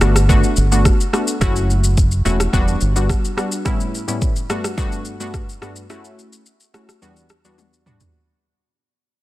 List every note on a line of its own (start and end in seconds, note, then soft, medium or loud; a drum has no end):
0.01 0.42 G1 loud
0.01 0.22 A3 medium
0.01 0.22 B3 medium
0.01 0.23 D4 medium
0.01 0.23 F#4 medium
0.01 cross-stick loud
0.01 shaker medium
0.16 cross-stick medium
0.16 shaker loud
0.29 0.68 A3 medium
0.29 0.68 B3 medium
0.29 0.68 D4 medium
0.29 0.68 F#4 loud
0.29 kick loud
0.29 shaker medium
0.44 shaker medium
0.57 0.88 G1 medium
0.57 shaker medium
0.71 0.92 A3 medium
0.71 0.93 B3 medium
0.71 0.93 D4 medium
0.71 0.93 F#4 medium
0.71 shaker medium
0.85 kick medium
0.85 cross-stick medium
0.85 shaker medium
1.01 shaker medium
1.13 1.34 A3 medium
1.13 1.35 B3 medium
1.13 1.35 D4 medium
1.13 1.35 F#4 medium
1.13 cross-stick medium
1.13 shaker soft
1.27 shaker medium
1.41 2.22 F#1 loud
1.41 1.93 A3 medium
1.41 1.93 C#4 medium
1.41 1.93 E4 medium
1.41 1.93 F#4 loud
1.41 kick loud
1.41 cross-stick medium
1.41 shaker medium
1.56 shaker medium
1.70 shaker soft
1.84 shaker medium
1.97 kick medium
1.97 shaker medium
2.11 shaker medium
2.25 2.46 E1 medium
2.25 2.47 A3 medium
2.25 2.47 C#4 medium
2.25 2.47 E4 medium
2.25 2.47 F#4 medium
2.25 shaker medium
2.40 cross-stick loud
2.40 shaker medium
2.53 2.74 E1 loud
2.53 2.74 G3 medium
2.53 2.75 B3 medium
2.53 2.75 D4 medium
2.53 2.75 F#4 loud
2.53 kick loud
2.53 shaker medium
2.68 shaker soft
2.81 3.12 G1 medium
2.81 shaker medium
2.96 3.34 G3 medium
2.96 3.34 B3 medium
2.96 3.34 D4 medium
2.96 3.35 F#4 medium
2.96 shaker medium
3.10 kick medium
3.10 cross-stick medium
3.10 shaker medium
3.25 shaker medium
3.37 3.63 G3 medium
3.37 3.63 B3 medium
3.37 3.63 D4 medium
3.37 3.64 F#4 medium
3.37 cross-stick medium
3.37 shaker soft
3.52 shaker medium
3.65 4.04 A2 medium
3.65 4.04 G3 medium
3.65 4.05 B3 medium
3.65 4.05 C#4 medium
3.65 4.05 E4 loud
3.65 kick loud
3.65 cross-stick medium
3.65 shaker medium
3.80 shaker medium
3.95 shaker soft
4.08 4.29 A2 medium
4.08 4.29 G3 medium
4.08 4.29 B3 medium
4.08 4.29 C#4 medium
4.08 4.29 E4 medium
4.08 shaker medium
4.22 kick medium
4.22 shaker medium
4.36 shaker soft
4.49 4.71 G2 medium
4.49 4.71 A3 medium
4.49 4.71 B3 medium
4.49 4.71 D4 medium
4.49 4.71 F#4 medium
4.49 cross-stick loud
4.49 shaker medium
4.64 cross-stick loud
4.64 shaker medium
4.77 5.17 G2 loud
4.77 5.17 A3 medium
4.77 5.17 B3 medium
4.77 5.17 D4 medium
4.77 5.17 F#4 loud
4.77 kick loud
4.77 shaker medium
4.92 shaker soft
5.05 shaker medium
5.20 5.41 G2 medium
5.20 5.41 A3 medium
5.20 5.41 B3 medium
5.20 5.41 D4 medium
5.20 5.41 F#4 medium
5.20 shaker medium
5.34 kick medium
5.34 cross-stick medium
5.34 shaker medium
5.49 shaker medium
5.61 5.83 G2 medium
5.61 5.83 A3 medium
5.61 5.83 B3 medium
5.61 5.83 D4 medium
5.61 5.83 F#4 medium
5.61 cross-stick medium
5.61 shaker soft
5.76 shaker medium
5.90 6.42 A3 loud
5.90 6.42 C#4 medium
5.90 6.42 E4 medium
5.90 6.42 F#4 loud
5.90 cross-stick medium
5.90 shaker medium
6.05 shaker medium
6.19 shaker soft
6.33 shaker medium
6.46 shaker medium
6.60 shaker soft
6.74 6.95 A3 medium
6.74 6.95 C#4 medium
6.74 6.95 E4 medium
6.74 6.95 F#4 medium
6.74 cross-stick loud
6.74 shaker medium
6.89 cross-stick medium
6.89 shaker medium
7.02 7.23 E2 loud
7.02 7.23 G3 medium
7.02 7.23 B3 medium
7.02 7.23 D4 medium
7.02 7.24 F#4 loud
7.02 shaker medium
7.16 shaker soft
7.29 cross-stick medium
7.29 shaker medium
7.44 7.83 E2 medium
7.44 7.83 G3 medium
7.44 7.83 B3 medium
7.44 7.83 D4 medium
7.44 7.83 F#4 medium
7.44 shaker medium
7.58 high tom soft
7.58 shaker medium
7.73 shaker medium
7.86 8.12 E2 medium
7.86 8.12 G3 medium
7.86 8.12 B3 medium
7.86 8.12 D4 medium
7.86 8.12 F#4 medium
7.86 mid tom medium
7.86 shaker soft
8.00 floor tom medium
8.00 shaker medium